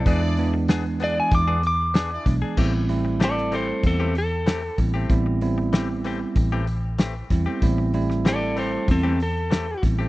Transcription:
<<
  \new Staff \with { instrumentName = "Lead electric guitar" } { \time 4/4 \key a \minor \tempo 4 = 95 r4. d''16 gis''16 d'''8 d'''4 r8 | r4 <a' d''>8 <a' c''>8 <c' a'>8 a'4 r8 | r1 | r4 <a' d''>8 <a' c''>8 <c' a'>8 a'4 r8 | }
  \new Staff \with { instrumentName = "Horn section" } { \time 4/4 \key a \minor <d' e' gis' d''>8. r8. <d' e' gis' d''>4 r8. <d' e' gis' d''>16 r8 | r1 | r1 | r1 | }
  \new Staff \with { instrumentName = "Clean electric guitar" } { \time 4/4 \key a \minor <b d' gis'>16 r8. <b d' gis'>16 r16 <b d' gis'>16 r8 <b d' gis'>16 r8 <b d' gis'>16 r8 <d' gis'>16 | <e a c' g'>16 r8. <e a c' g'>16 r16 <e a c' g'>16 r8 <e a c' g'>16 r8 <e a c' g'>16 r8 <a c' g'>16 | r4 <e a c' g'>16 r16 <e a c' g'>16 r8 <e a c' g'>16 r8 <e a c' g'>16 r8 <a c' g'>16 | r4 <e a c' g'>16 r16 <e a c' g'>16 r8 <e a c' g'>16 r8 <e a c' g'>16 r8 <a c' g'>16 | }
  \new Staff \with { instrumentName = "Tine electric piano" } { \time 4/4 \key a \minor <e gis b d'>8 <e gis b d'>2 r4 <e gis b d'>8 | <g b c' e'>8 <g a c' e'>2 r4 <g b c' e'>8 | <g b c' e'>8 <g b c' e'>2 r4 <g b c' e'>8 | <g b c' e'>8 <g a c' e'>2 r4 <g b c' e'>8 | }
  \new Staff \with { instrumentName = "Fingered electric bass" } { \clef bass \time 4/4 \key a \minor e,2 e,4. b,,16 r16 | a,,2 e,4. a,,8 | a,,2 a,,4. e,16 r16 | a,,2 e,4. a,,8 | }
  \new DrumStaff \with { instrumentName = "Drums" } \drummode { \time 4/4 <hho bd>8 hho8 <hho sn>8 hho8 <hho bd>8 hho8 <hho sn>8 <hho bd>8 | <cymc bd>8 hho8 <hho sn>16 sn16 hho8 <hho bd>8 hho8 <hho sn>8 <hho bd>8 | <hho bd>8 hho8 <hho sn>8 hho8 <hho bd>8 hho8 <hho sn>8 <hho bd sn>8 | <hho bd>8 hho16 sn16 <hho sn>8 hho8 <hho bd>8 hho8 <hho sn>8 <hho bd sn>8 | }
>>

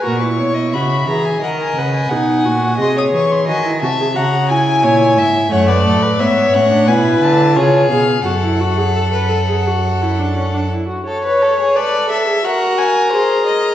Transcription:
<<
  \new Staff \with { instrumentName = "Violin" } { \time 4/4 \key cis \minor \tempo 4 = 87 cis'''4 b''8 ais''16 gis''16 fis''16 gis''16 fis''16 gis''4~ gis''16 | bis''16 dis'''16 cis'''16 bis''16 gis''8 a''8 ais''8 gis''4. | \key fis \minor fis''16 d''8. e''8 fis''8 gis''8 a''8 cis''8 eis''8 | fis''2.~ fis''8 r8 |
r16 cis''8. d''8 e''8 fis''8 gis''8 bis'8 dis''8 | }
  \new Staff \with { instrumentName = "Violin" } { \time 4/4 \key cis \minor ais'16 b'16 cis''16 dis''16 e''4 dis''4 fis''4 | dis''16 cis''8. dis''8 e''8 fis''8 gis''8 cis''8 e''8 | \key fis \minor cis''16 b'16 a'16 b'16 cis''4 b'4 gis'4 | a'2.~ a'8 r8 |
a'16 b'16 a'16 gis'16 a'4 ais'2 | }
  \new Staff \with { instrumentName = "Viola" } { \time 4/4 \key cis \minor fis'16 e'8. fis'8 gis'8 ais'8 b'8 dis'8 fis'8 | gis'4 fis'16 e'16 fis'16 gis'16 fis'8 e'4. | \key fis \minor a4 b8 cis'16 d'16 e'4 eis'8 gis'8 | fis'16 e'16 fis'16 gis'16 a'16 b'16 a'16 gis'16 fis'8 e'16 d'16 cis'16 d'16 e'16 fis'16 |
cis''4 b'8 a'16 gis'16 fis'4 gis'4 | }
  \new Staff \with { instrumentName = "Cello" } { \clef bass \time 4/4 \key cis \minor ais,8 b,8 cis8 e8 dis8 cis8 b,8 ais,8 | bis,8 e8 dis8 bis,8 cis4 ais,8 gis,8 | \key fis \minor fis,8 a,8 gis,8 a,8 b,8 d8 cis8 b,8 | fis,2.~ fis,8 r8 |
r1 | }
>>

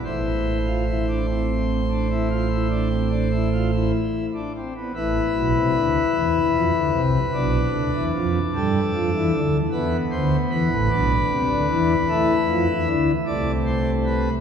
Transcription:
<<
  \new Staff \with { instrumentName = "Pipe organ" } { \time 12/8 \key a \minor \tempo 4. = 50 << { c''1~ c''4. r8 | b'1~ b'8 a'4. | b'8 c''8 b'2.~ b'8 d''8 c''8 b'8 | } \\ { e'8. f'16 e'16 d'16 c'8. d'16 e'16 f'16 e'16 d'16 c'16 d'16 e'16 f'16 e'8. d'16 c'16 b16 | e'2. d'2. | b4. d'4. e'4. a4. | } >> }
  \new Staff \with { instrumentName = "Pipe organ" } { \clef bass \time 12/8 \key a \minor <a,, a,>1~ <a,, a,>4. r8 | <a,, a,>8 <b,, b,>16 <c, c>16 <d, d>8 <e, e>8 <f, f>16 <d, d>16 <c, c>8 <b,, b,>8 <d, d>16 <e, e>16 <f, f>8 <g, g>8 <f, f>16 <e, e>16 <d, d>8 | <e, e>8 <d, d>8 <e, e>16 <a,, a,>16 <b,, b,>8 <c, c>16 <d, d>16 <e, e>8 a8 <f, f>16 <e, e>16 <d, d>8 <c, c>4. | }
>>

